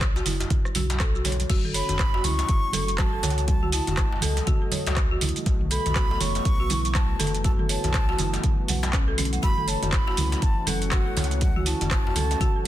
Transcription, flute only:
1.74 B5
2.24 C#6
2.99 A5
3.48 A5
3.73 A5
5.71 B5
6.21 C#6
6.96 A5
7.45 A5
7.70 A5
9.43 B5
9.69 A5
9.94 B5
10.43 A5
10.68 F#5
11.42 F#5
11.67 A5
11.91 A5

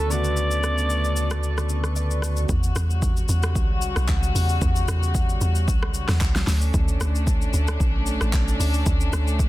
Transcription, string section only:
Already playing: A4 B4 C#6
2.49 C#3 G3 F#4
6.47 A3 C#4 D4

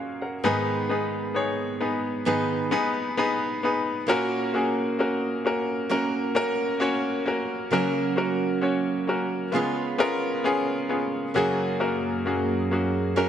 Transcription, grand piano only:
Already playing: F#2 C#3 A#3 C#4 F4 F#4 G#4 A#4 C#5 F5
0.21 A#4 F#5
0.44 G#2 D#3 B3 D#4 G#4 B4
0.89 B3 D#4 G#4 B4
1.34 B3 D#4 G#4 C#5
1.81 B3 D#4 G#4 B4
2.26 B3 D#4 G#4 B4
2.71 B3 D#4 G#4 B4
3.17 B3 D#4 G#4 B4
3.63 B3 D#4 G#4 B4
4.08 A#2 A#3 C#4 F#4 A#4
4.54 A#3 C#4 F#4 G#4
4.99 A#3 C#4 F#4 A#4
5.45 A#3 C#4 F#4 A#4
5.89 A#3 C#4 F#4 A#4
6.35 A#3 C#4 F#4 A#4
6.80 A#3 C#4 F#4 C#5
7.25 A#3 C#4 F#4 A#4
7.72 C#3 A#3 C#4 F#4 A#4
8.16 A#3 C#4 F#4 A#4
8.61 A#3 C#4 F#4 C#5
9.07 A#3 C#4 F#4 A#4
9.52 C#3 G#3 B3 C#4 F4 G#4
9.98 B3 C#4 F4 A#4
10.44 B3 C#4 F4 G#4
10.89 B3 C#4 F4 G#4
11.35 F#2 C#3 A#3 C#4 F#4 G#4
11.80 A#3 C#4 F#4 A#4
12.25 A#3 C#4 F#4 G#4
12.71 A#3 C#4 F#4 G#4
13.16 A#3 C#4 F#4 A#4

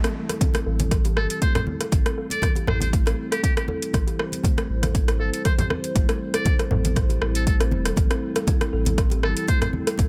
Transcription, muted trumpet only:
1.17 A4
1.30 A4
1.42 C5
1.56 C5
2.31 D5
2.68 C5
2.81 C5
3.32 G4
3.43 G4
3.57 G4
5.20 A4
5.33 A4
5.45 C5
5.59 C5
6.34 D5
7.35 A4
7.47 A4
9.23 A4
9.37 A4
9.48 C5
9.61 C5

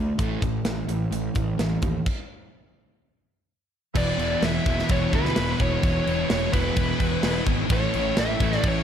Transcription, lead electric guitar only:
3.97 D5
4.45 E5
4.91 C#5
5.15 B4
5.53 B4
5.62 C#5
6.31 C#5
6.53 B4
7.72 C#5
8.19 E5
8.68 C#5

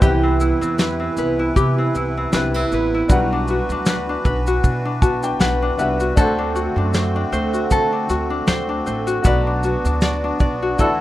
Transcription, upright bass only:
0.02 C2
0.61 E2
1.17 C2
1.56 C3
1.94 C2
2.33 C2
2.71 A1
3.09 B1
3.69 D2
4.25 B1
4.64 B2
5.02 B1
5.39 B1
5.77 C2
6.17 D2
6.76 F#2
7.32 D2
7.71 D3
8.09 D2
8.47 D2
8.87 A1
9.25 B1
9.85 D2
10.40 B1
10.79 D2

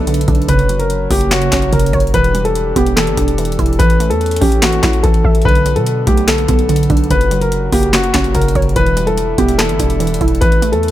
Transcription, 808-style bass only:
Already playing: B1
0.28 B1
0.49 F#1
1.11 F#1
1.52 F#1
1.73 F#1
1.93 F#1
2.14 E1
2.76 E1
3.07 G1
3.18 E1
3.59 E1
3.80 A1
4.11 E2
4.42 A1
4.83 A1
5.04 A1
5.24 A1
5.45 B1
5.76 B2
6.07 B1
6.49 B1
6.90 B1
7.11 F#1
7.73 F#1
8.14 F#1
8.35 F#1
8.55 F#1
8.76 E1
9.38 E1
9.69 G1
9.80 E1
10.21 E1
10.42 A1
10.73 E2

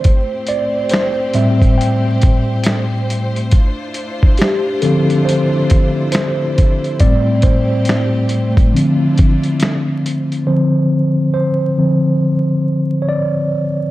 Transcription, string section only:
Already playing: A3 E4
0.04 C4 G4 C5
3.52 D4 E4 F4
7.00 A3 C4 G4
8.74 D4 E4 F4

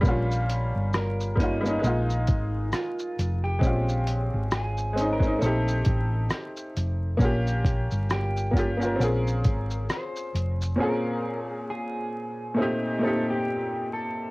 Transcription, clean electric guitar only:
0.95 A#4
1.39 D#4
2.74 F4
3.44 G4
4.52 G#4
5.13 A#4
5.42 A4
8.12 G4
8.56 F4
9.01 A#4
9.90 C5
10.80 A#4
11.45 G#4
11.70 G#4
12.59 D#4
13.04 A4
13.30 G4
13.93 A4

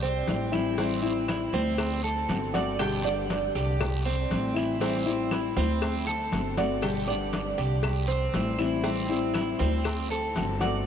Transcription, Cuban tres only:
0.02 C4
0.53 E4
0.78 C4
1.28 E4
1.54 C4
2.04 A4
2.54 D5
2.79 G4
3.04 D5
3.55 G4
4.06 C4
4.56 E4
4.81 C4
5.32 E4
5.57 C4
6.07 A4
6.58 D5
6.82 G4
7.08 D5
7.58 G4
8.08 C4
8.58 E4
8.84 C4
9.34 E4
9.59 C4
10.11 A4
10.61 D5

